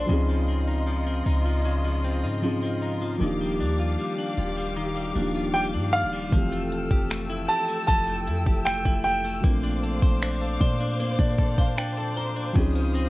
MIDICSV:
0, 0, Header, 1, 7, 480
1, 0, Start_track
1, 0, Key_signature, -1, "major"
1, 0, Tempo, 779221
1, 55, Time_signature, 4, 2, 24, 8
1, 8063, End_track
2, 0, Start_track
2, 0, Title_t, "Grand piano"
2, 0, Program_c, 0, 0
2, 3410, Note_on_c, 0, 79, 81
2, 3465, Note_off_c, 0, 79, 0
2, 3651, Note_on_c, 0, 77, 100
2, 4588, Note_off_c, 0, 77, 0
2, 4610, Note_on_c, 0, 81, 97
2, 4840, Note_off_c, 0, 81, 0
2, 4849, Note_on_c, 0, 81, 97
2, 5329, Note_on_c, 0, 79, 86
2, 5346, Note_off_c, 0, 81, 0
2, 5560, Note_off_c, 0, 79, 0
2, 5569, Note_on_c, 0, 79, 86
2, 7467, Note_off_c, 0, 79, 0
2, 8063, End_track
3, 0, Start_track
3, 0, Title_t, "String section"
3, 0, Program_c, 1, 48
3, 0, Note_on_c, 1, 84, 80
3, 55, Note_on_c, 1, 65, 70
3, 55, Note_on_c, 1, 75, 63
3, 1950, Note_off_c, 1, 84, 0
3, 1955, Note_off_c, 1, 65, 0
3, 1955, Note_off_c, 1, 75, 0
3, 1976, Note_on_c, 1, 86, 76
3, 1977, Note_on_c, 1, 67, 75
3, 1978, Note_on_c, 1, 77, 66
3, 3876, Note_off_c, 1, 86, 0
3, 3877, Note_off_c, 1, 67, 0
3, 3877, Note_off_c, 1, 77, 0
3, 3897, Note_on_c, 1, 69, 68
3, 3897, Note_on_c, 1, 79, 68
3, 3897, Note_on_c, 1, 88, 81
3, 5796, Note_off_c, 1, 69, 0
3, 5796, Note_off_c, 1, 88, 0
3, 5797, Note_off_c, 1, 79, 0
3, 5814, Note_on_c, 1, 86, 79
3, 5815, Note_on_c, 1, 72, 75
3, 5816, Note_on_c, 1, 77, 67
3, 7715, Note_off_c, 1, 86, 0
3, 7716, Note_off_c, 1, 77, 0
3, 7735, Note_on_c, 1, 77, 68
3, 7735, Note_on_c, 1, 87, 82
3, 8063, Note_off_c, 1, 72, 0
3, 8063, Note_off_c, 1, 77, 0
3, 8063, Note_off_c, 1, 87, 0
3, 8063, End_track
4, 0, Start_track
4, 0, Title_t, "Clean electric guitar"
4, 0, Program_c, 2, 27
4, 0, Note_on_c, 2, 58, 76
4, 0, Note_on_c, 2, 62, 59
4, 0, Note_on_c, 2, 69, 58
4, 0, Note_on_c, 2, 72, 65
4, 56, Note_on_c, 2, 49, 87
4, 103, Note_off_c, 2, 58, 0
4, 103, Note_off_c, 2, 69, 0
4, 104, Note_off_c, 2, 62, 0
4, 176, Note_on_c, 2, 53, 55
4, 297, Note_on_c, 2, 60, 59
4, 417, Note_on_c, 2, 63, 68
4, 533, Note_off_c, 2, 53, 0
4, 536, Note_on_c, 2, 53, 65
4, 649, Note_off_c, 2, 60, 0
4, 656, Note_on_c, 2, 60, 58
4, 774, Note_off_c, 2, 63, 0
4, 776, Note_on_c, 2, 63, 68
4, 894, Note_off_c, 2, 53, 0
4, 897, Note_on_c, 2, 53, 55
4, 1010, Note_off_c, 2, 49, 0
4, 1018, Note_on_c, 2, 49, 77
4, 1036, Note_off_c, 2, 72, 0
4, 1135, Note_off_c, 2, 53, 0
4, 1137, Note_on_c, 2, 53, 57
4, 1250, Note_off_c, 2, 60, 0
4, 1258, Note_on_c, 2, 60, 57
4, 1375, Note_off_c, 2, 63, 0
4, 1378, Note_on_c, 2, 63, 63
4, 1495, Note_off_c, 2, 53, 0
4, 1497, Note_on_c, 2, 53, 71
4, 1610, Note_off_c, 2, 60, 0
4, 1618, Note_on_c, 2, 60, 56
4, 1735, Note_off_c, 2, 63, 0
4, 1738, Note_on_c, 2, 63, 65
4, 1855, Note_off_c, 2, 53, 0
4, 1858, Note_on_c, 2, 53, 58
4, 1976, Note_off_c, 2, 49, 0
4, 1978, Note_on_c, 2, 51, 78
4, 2024, Note_off_c, 2, 60, 0
4, 2096, Note_off_c, 2, 53, 0
4, 2099, Note_on_c, 2, 55, 55
4, 2219, Note_on_c, 2, 62, 60
4, 2237, Note_off_c, 2, 63, 0
4, 2339, Note_on_c, 2, 65, 68
4, 2455, Note_off_c, 2, 55, 0
4, 2458, Note_on_c, 2, 55, 62
4, 2570, Note_off_c, 2, 62, 0
4, 2577, Note_on_c, 2, 62, 57
4, 2694, Note_off_c, 2, 65, 0
4, 2697, Note_on_c, 2, 65, 65
4, 2815, Note_off_c, 2, 55, 0
4, 2817, Note_on_c, 2, 55, 57
4, 2929, Note_off_c, 2, 51, 0
4, 2936, Note_on_c, 2, 51, 77
4, 3053, Note_off_c, 2, 55, 0
4, 3055, Note_on_c, 2, 55, 61
4, 3169, Note_off_c, 2, 62, 0
4, 3176, Note_on_c, 2, 62, 55
4, 3293, Note_off_c, 2, 65, 0
4, 3296, Note_on_c, 2, 65, 58
4, 3413, Note_off_c, 2, 55, 0
4, 3415, Note_on_c, 2, 55, 69
4, 3528, Note_off_c, 2, 62, 0
4, 3535, Note_on_c, 2, 62, 56
4, 3653, Note_off_c, 2, 65, 0
4, 3656, Note_on_c, 2, 65, 66
4, 3772, Note_off_c, 2, 55, 0
4, 3775, Note_on_c, 2, 55, 58
4, 3892, Note_off_c, 2, 51, 0
4, 3894, Note_on_c, 2, 53, 78
4, 3943, Note_off_c, 2, 62, 0
4, 4013, Note_off_c, 2, 55, 0
4, 4015, Note_on_c, 2, 57, 55
4, 4253, Note_off_c, 2, 65, 0
4, 4255, Note_on_c, 2, 67, 66
4, 4372, Note_off_c, 2, 57, 0
4, 4375, Note_on_c, 2, 57, 64
4, 4495, Note_on_c, 2, 64, 58
4, 4608, Note_off_c, 2, 67, 0
4, 4615, Note_on_c, 2, 67, 66
4, 4733, Note_off_c, 2, 57, 0
4, 4735, Note_on_c, 2, 57, 58
4, 4852, Note_off_c, 2, 53, 0
4, 4855, Note_on_c, 2, 53, 76
4, 4973, Note_off_c, 2, 57, 0
4, 4976, Note_on_c, 2, 57, 60
4, 5087, Note_off_c, 2, 64, 0
4, 5095, Note_on_c, 2, 64, 54
4, 5207, Note_off_c, 2, 67, 0
4, 5215, Note_on_c, 2, 67, 63
4, 5332, Note_off_c, 2, 57, 0
4, 5334, Note_on_c, 2, 57, 72
4, 5447, Note_off_c, 2, 64, 0
4, 5455, Note_on_c, 2, 64, 59
4, 5568, Note_off_c, 2, 67, 0
4, 5575, Note_on_c, 2, 67, 63
4, 5693, Note_off_c, 2, 57, 0
4, 5695, Note_on_c, 2, 57, 60
4, 5812, Note_off_c, 2, 57, 0
4, 5814, Note_on_c, 2, 58, 82
4, 5863, Note_off_c, 2, 64, 0
4, 5863, Note_off_c, 2, 67, 0
4, 5935, Note_on_c, 2, 62, 57
4, 6055, Note_on_c, 2, 69, 61
4, 6175, Note_on_c, 2, 72, 70
4, 6289, Note_off_c, 2, 62, 0
4, 6296, Note_on_c, 2, 62, 67
4, 6408, Note_off_c, 2, 69, 0
4, 6415, Note_on_c, 2, 69, 56
4, 6533, Note_off_c, 2, 72, 0
4, 6535, Note_on_c, 2, 72, 67
4, 6647, Note_off_c, 2, 62, 0
4, 6655, Note_on_c, 2, 62, 57
4, 6768, Note_off_c, 2, 58, 0
4, 6775, Note_on_c, 2, 58, 77
4, 6889, Note_off_c, 2, 62, 0
4, 6896, Note_on_c, 2, 62, 57
4, 7009, Note_off_c, 2, 69, 0
4, 7011, Note_off_c, 2, 53, 0
4, 7016, Note_on_c, 2, 69, 56
4, 7133, Note_off_c, 2, 72, 0
4, 7136, Note_on_c, 2, 72, 64
4, 7247, Note_off_c, 2, 62, 0
4, 7255, Note_on_c, 2, 62, 73
4, 7368, Note_off_c, 2, 69, 0
4, 7376, Note_on_c, 2, 69, 61
4, 7494, Note_off_c, 2, 72, 0
4, 7496, Note_on_c, 2, 72, 66
4, 7608, Note_off_c, 2, 62, 0
4, 7615, Note_on_c, 2, 62, 58
4, 7736, Note_on_c, 2, 49, 81
4, 7783, Note_off_c, 2, 58, 0
4, 7783, Note_off_c, 2, 62, 0
4, 7783, Note_off_c, 2, 69, 0
4, 7856, Note_on_c, 2, 53, 52
4, 7975, Note_on_c, 2, 60, 58
4, 8063, Note_off_c, 2, 49, 0
4, 8063, Note_off_c, 2, 53, 0
4, 8063, Note_off_c, 2, 60, 0
4, 8063, Note_off_c, 2, 72, 0
4, 8063, End_track
5, 0, Start_track
5, 0, Title_t, "Felt piano"
5, 0, Program_c, 3, 0
5, 0, Control_c, 3, 64, 127
5, 0, Note_on_c, 3, 74, 68
5, 0, Note_on_c, 3, 77, 69
5, 0, Note_on_c, 3, 81, 63
5, 35, Note_on_c, 3, 53, 73
5, 45, Note_on_c, 3, 60, 70
5, 56, Note_on_c, 3, 61, 68
5, 62, Note_off_c, 3, 81, 0
5, 62, Control_c, 3, 64, 0
5, 65, Note_off_c, 3, 77, 0
5, 67, Note_on_c, 3, 63, 69
5, 78, Note_on_c, 3, 68, 82
5, 160, Control_c, 3, 64, 127
5, 163, Note_off_c, 3, 74, 0
5, 1460, Note_off_c, 3, 53, 0
5, 1465, Note_off_c, 3, 60, 0
5, 1471, Note_off_c, 3, 61, 0
5, 1476, Note_off_c, 3, 63, 0
5, 1482, Note_off_c, 3, 68, 0
5, 1487, Note_on_c, 3, 53, 56
5, 1493, Note_on_c, 3, 60, 51
5, 1498, Note_on_c, 3, 61, 52
5, 1503, Note_on_c, 3, 63, 51
5, 1509, Note_on_c, 3, 68, 60
5, 1947, Note_off_c, 3, 53, 0
5, 1956, Note_on_c, 3, 53, 78
5, 1967, Note_on_c, 3, 58, 70
5, 1974, Note_off_c, 3, 60, 0
5, 1976, Note_off_c, 3, 61, 0
5, 1978, Note_on_c, 3, 62, 67
5, 1979, Note_off_c, 3, 63, 0
5, 1982, Note_off_c, 3, 68, 0
5, 1984, Control_c, 3, 64, 0
5, 1989, Note_on_c, 3, 63, 66
5, 1999, Note_on_c, 3, 67, 76
5, 2110, Control_c, 3, 64, 127
5, 3141, Note_off_c, 3, 53, 0
5, 3147, Note_off_c, 3, 58, 0
5, 3152, Note_off_c, 3, 62, 0
5, 3158, Note_off_c, 3, 63, 0
5, 3163, Note_off_c, 3, 67, 0
5, 3165, Note_on_c, 3, 53, 54
5, 3171, Note_on_c, 3, 58, 50
5, 3176, Note_on_c, 3, 62, 52
5, 3182, Note_on_c, 3, 63, 49
5, 3187, Note_on_c, 3, 65, 60
5, 3867, Note_off_c, 3, 53, 0
5, 3876, Note_on_c, 3, 53, 62
5, 3887, Note_on_c, 3, 57, 56
5, 3893, Note_off_c, 3, 58, 0
5, 3895, Note_off_c, 3, 62, 0
5, 3898, Note_off_c, 3, 63, 0
5, 3898, Note_on_c, 3, 60, 56
5, 3901, Note_off_c, 3, 65, 0
5, 3901, Control_c, 3, 64, 0
5, 3909, Note_on_c, 3, 52, 57
5, 3919, Note_on_c, 3, 67, 69
5, 4026, Control_c, 3, 64, 127
5, 5781, Note_off_c, 3, 53, 0
5, 5786, Note_off_c, 3, 57, 0
5, 5791, Note_off_c, 3, 60, 0
5, 5795, Note_on_c, 3, 53, 62
5, 5797, Note_off_c, 3, 52, 0
5, 5802, Note_off_c, 3, 67, 0
5, 5806, Note_on_c, 3, 58, 60
5, 5816, Note_on_c, 3, 60, 55
5, 5822, Control_c, 3, 64, 0
5, 5826, Note_on_c, 3, 62, 56
5, 5837, Note_on_c, 3, 57, 68
5, 5945, Control_c, 3, 64, 127
5, 6537, Note_on_c, 3, 74, 68
5, 6759, Note_off_c, 3, 74, 0
5, 6777, Note_on_c, 3, 72, 68
5, 6887, Note_off_c, 3, 72, 0
5, 6896, Note_on_c, 3, 74, 70
5, 7119, Note_off_c, 3, 74, 0
5, 7136, Note_on_c, 3, 77, 65
5, 7247, Note_off_c, 3, 77, 0
5, 7256, Note_on_c, 3, 79, 70
5, 7367, Note_off_c, 3, 79, 0
5, 7376, Note_on_c, 3, 81, 67
5, 7487, Note_off_c, 3, 81, 0
5, 7497, Note_on_c, 3, 82, 69
5, 7700, Note_off_c, 3, 53, 0
5, 7705, Note_off_c, 3, 58, 0
5, 7711, Note_off_c, 3, 60, 0
5, 7715, Note_on_c, 3, 53, 79
5, 7716, Note_off_c, 3, 62, 0
5, 7719, Note_off_c, 3, 82, 0
5, 7721, Note_off_c, 3, 57, 0
5, 7725, Note_on_c, 3, 60, 69
5, 7736, Note_on_c, 3, 61, 68
5, 7743, Control_c, 3, 64, 0
5, 7746, Note_on_c, 3, 63, 67
5, 7758, Note_on_c, 3, 68, 83
5, 7845, Control_c, 3, 64, 127
5, 8063, Note_off_c, 3, 53, 0
5, 8063, Note_off_c, 3, 60, 0
5, 8063, Note_off_c, 3, 61, 0
5, 8063, Note_off_c, 3, 63, 0
5, 8063, Note_off_c, 3, 68, 0
5, 8063, End_track
6, 0, Start_track
6, 0, Title_t, "808-style bass"
6, 0, Program_c, 4, 38
6, 55, Note_on_c, 4, 37, 108
6, 750, Note_off_c, 4, 37, 0
6, 776, Note_on_c, 4, 37, 107
6, 1376, Note_on_c, 4, 44, 94
6, 1385, Note_off_c, 4, 37, 0
6, 1951, Note_off_c, 4, 44, 0
6, 1976, Note_on_c, 4, 27, 101
6, 2217, Note_on_c, 4, 39, 94
6, 2226, Note_off_c, 4, 27, 0
6, 2444, Note_off_c, 4, 39, 0
6, 2696, Note_on_c, 4, 27, 102
6, 3156, Note_off_c, 4, 27, 0
6, 3176, Note_on_c, 4, 27, 102
6, 3536, Note_on_c, 4, 43, 93
6, 3546, Note_off_c, 4, 27, 0
6, 3716, Note_on_c, 4, 27, 90
6, 3725, Note_off_c, 4, 43, 0
6, 3886, Note_off_c, 4, 27, 0
6, 3895, Note_on_c, 4, 29, 96
6, 4135, Note_on_c, 4, 28, 98
6, 4144, Note_off_c, 4, 29, 0
6, 4249, Note_off_c, 4, 28, 0
6, 4255, Note_on_c, 4, 29, 102
6, 4600, Note_off_c, 4, 29, 0
6, 4856, Note_on_c, 4, 29, 104
6, 5095, Note_on_c, 4, 41, 97
6, 5104, Note_off_c, 4, 29, 0
6, 5209, Note_off_c, 4, 41, 0
6, 5214, Note_on_c, 4, 29, 101
6, 5445, Note_off_c, 4, 29, 0
6, 5454, Note_on_c, 4, 29, 98
6, 5800, Note_off_c, 4, 29, 0
6, 5814, Note_on_c, 4, 34, 102
6, 6160, Note_off_c, 4, 34, 0
6, 6174, Note_on_c, 4, 34, 98
6, 6520, Note_off_c, 4, 34, 0
6, 6534, Note_on_c, 4, 46, 103
6, 6880, Note_off_c, 4, 46, 0
6, 6893, Note_on_c, 4, 46, 105
6, 7709, Note_off_c, 4, 46, 0
6, 7735, Note_on_c, 4, 37, 103
6, 8063, Note_off_c, 4, 37, 0
6, 8063, End_track
7, 0, Start_track
7, 0, Title_t, "Drums"
7, 3895, Note_on_c, 9, 36, 95
7, 3896, Note_on_c, 9, 42, 59
7, 3957, Note_off_c, 9, 36, 0
7, 3957, Note_off_c, 9, 42, 0
7, 4019, Note_on_c, 9, 42, 47
7, 4081, Note_off_c, 9, 42, 0
7, 4140, Note_on_c, 9, 42, 67
7, 4201, Note_off_c, 9, 42, 0
7, 4255, Note_on_c, 9, 36, 92
7, 4255, Note_on_c, 9, 42, 57
7, 4316, Note_off_c, 9, 36, 0
7, 4316, Note_off_c, 9, 42, 0
7, 4377, Note_on_c, 9, 42, 79
7, 4380, Note_on_c, 9, 26, 111
7, 4438, Note_off_c, 9, 42, 0
7, 4442, Note_off_c, 9, 26, 0
7, 4496, Note_on_c, 9, 42, 44
7, 4558, Note_off_c, 9, 42, 0
7, 4613, Note_on_c, 9, 42, 68
7, 4675, Note_off_c, 9, 42, 0
7, 4733, Note_on_c, 9, 42, 46
7, 4794, Note_off_c, 9, 42, 0
7, 4856, Note_on_c, 9, 36, 89
7, 4856, Note_on_c, 9, 42, 65
7, 4917, Note_off_c, 9, 36, 0
7, 4918, Note_off_c, 9, 42, 0
7, 4974, Note_on_c, 9, 42, 46
7, 5036, Note_off_c, 9, 42, 0
7, 5097, Note_on_c, 9, 42, 59
7, 5158, Note_off_c, 9, 42, 0
7, 5214, Note_on_c, 9, 36, 90
7, 5276, Note_off_c, 9, 36, 0
7, 5334, Note_on_c, 9, 42, 75
7, 5338, Note_on_c, 9, 26, 113
7, 5396, Note_off_c, 9, 42, 0
7, 5400, Note_off_c, 9, 26, 0
7, 5454, Note_on_c, 9, 36, 88
7, 5457, Note_on_c, 9, 42, 44
7, 5516, Note_off_c, 9, 36, 0
7, 5519, Note_off_c, 9, 42, 0
7, 5698, Note_on_c, 9, 42, 49
7, 5759, Note_off_c, 9, 42, 0
7, 5814, Note_on_c, 9, 36, 95
7, 5815, Note_on_c, 9, 42, 63
7, 5876, Note_off_c, 9, 36, 0
7, 5876, Note_off_c, 9, 42, 0
7, 5938, Note_on_c, 9, 42, 46
7, 5999, Note_off_c, 9, 42, 0
7, 6059, Note_on_c, 9, 42, 69
7, 6120, Note_off_c, 9, 42, 0
7, 6173, Note_on_c, 9, 42, 56
7, 6174, Note_on_c, 9, 36, 90
7, 6235, Note_off_c, 9, 42, 0
7, 6236, Note_off_c, 9, 36, 0
7, 6295, Note_on_c, 9, 42, 78
7, 6299, Note_on_c, 9, 26, 116
7, 6357, Note_off_c, 9, 42, 0
7, 6361, Note_off_c, 9, 26, 0
7, 6415, Note_on_c, 9, 42, 42
7, 6477, Note_off_c, 9, 42, 0
7, 6532, Note_on_c, 9, 42, 68
7, 6534, Note_on_c, 9, 36, 102
7, 6594, Note_off_c, 9, 42, 0
7, 6596, Note_off_c, 9, 36, 0
7, 6652, Note_on_c, 9, 42, 46
7, 6713, Note_off_c, 9, 42, 0
7, 6776, Note_on_c, 9, 42, 65
7, 6838, Note_off_c, 9, 42, 0
7, 6893, Note_on_c, 9, 36, 86
7, 6893, Note_on_c, 9, 42, 46
7, 6955, Note_off_c, 9, 36, 0
7, 6955, Note_off_c, 9, 42, 0
7, 7014, Note_on_c, 9, 36, 88
7, 7016, Note_on_c, 9, 42, 59
7, 7076, Note_off_c, 9, 36, 0
7, 7078, Note_off_c, 9, 42, 0
7, 7134, Note_on_c, 9, 36, 85
7, 7196, Note_off_c, 9, 36, 0
7, 7255, Note_on_c, 9, 42, 72
7, 7259, Note_on_c, 9, 26, 113
7, 7317, Note_off_c, 9, 42, 0
7, 7321, Note_off_c, 9, 26, 0
7, 7378, Note_on_c, 9, 42, 43
7, 7440, Note_off_c, 9, 42, 0
7, 7618, Note_on_c, 9, 42, 48
7, 7680, Note_off_c, 9, 42, 0
7, 7735, Note_on_c, 9, 36, 94
7, 7735, Note_on_c, 9, 42, 62
7, 7796, Note_off_c, 9, 36, 0
7, 7797, Note_off_c, 9, 42, 0
7, 7858, Note_on_c, 9, 42, 49
7, 7919, Note_off_c, 9, 42, 0
7, 7979, Note_on_c, 9, 42, 68
7, 8040, Note_off_c, 9, 42, 0
7, 8063, End_track
0, 0, End_of_file